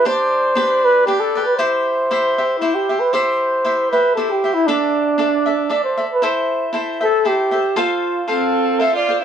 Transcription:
X:1
M:3/4
L:1/16
Q:"Swing" 1/4=117
K:C
V:1 name="Cavaquinho"
[DGd]4 [DGBd]4 [DGBd]2 [GBd]2 | [EGce]4 [EGce]2 [Gce]2 [EGce]2 [Gce]2 | [EGce]4 [EGce]2 [Gce]2 [EGce]2 [Gce]2 | [DAde]4 [DAde]2 [Ade]2 [DAde]2 [Ade]2 |
[EAce]4 [EAce]2 [Ace]2 [EAce]2 [Ace]2 | [FAcf]4 [FAcf]4 [FAcf]2 [Acf]2 |]
V:2 name="Trumpet"
c6 B2 G A2 B | c8 E G2 B | c6 B2 A G2 E | D8 d c2 B |
c4 z2 A2 G4 | F4 A4 e d2 z |]
V:3 name="Violin"
z12 | z12 | z12 | z12 |
z12 | z4 C4 A F2 E |]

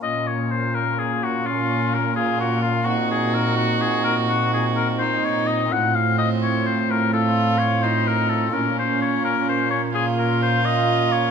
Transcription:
X:1
M:12/8
L:1/8
Q:3/8=85
K:Bbm
V:1 name="Oboe"
e d c B A G F2 B A G F | G A B G A B G A B c d e | g f e d c B =A2 d c B A | B c d B c d A B c e2 d |]
V:2 name="Violin"
z6 D3 F3 | G8- G E3 | C6 F3 E3 | D6 F6 |]
V:3 name="Pipe organ"
[B,DF]12 | [CE]12 | [CF]12 | [B,DF]12 |]
V:4 name="Pipe organ" clef=bass
B,,12- | B,,12 | =A,,12 | B,,12 |]
V:5 name="Cello" clef=bass
B,,12- | B,,12 | =A,,12 | B,,12 |]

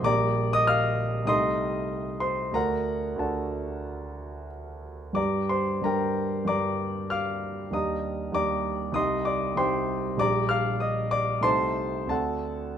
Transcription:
X:1
M:4/4
L:1/16
Q:1/4=95
K:Gm
V:1 name="Grand piano"
[dbd']3 [ee'] [ff']4 [ec'e']6 [cc']2 | [B^fb]4 [Afa]8 z4 | [dbd']2 [cc']2 [Bgb]4 [dbd']4 [fd'f']4 | [ebe']4 [dbd']4 [ec'e']2 [dd']2 [cgc']4 |
[dbd']2 [ff']2 [ee']2 [dd']2 [cac']4 [A^fa]4 |]
V:2 name="Grand piano"
[B,,,G,B,G]8 [C,,A,EG]8 | [D,,A,D^F]4 [D,,A,DF]12 | [G,,G,DG]4 [G,,G,DG]4 [G,,G,DG]8 | [E,,G,DG]4 [E,,G,DG]4 [C,,G,EG]4 [C,,G,EG]4 |
[B,,,G,DG]8 [C,,A,EG]4 [D,,CD^F]4 |]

